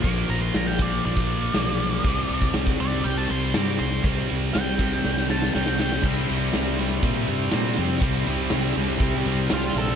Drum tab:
CC |----------------|x---------------|----------------|x---------------|
RD |x-x-x-x-x-x-x-x-|--x-x-x-x-x-x-x-|x-x-x-x---------|--x-x-x-x-x-x-x-|
SD |----o-------o---|----o-------o---|----o---oooooooo|----o-------o---|
BD |o-----o--o------|o--o-o----------|o-----o---------|o-------o-------|

CC |----------------|
RD |x-x-x-x-x-x-x-x-|
SD |----o----o--o---|
BD |o-------o-------|